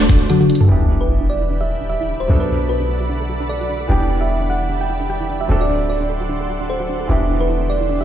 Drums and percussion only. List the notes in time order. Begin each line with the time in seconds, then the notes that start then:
0.09 kick, closed hi-hat
0.30 closed hi-hat, high tom
0.41 high tom
0.50 closed hi-hat
0.55 closed hi-hat
0.61 mid tom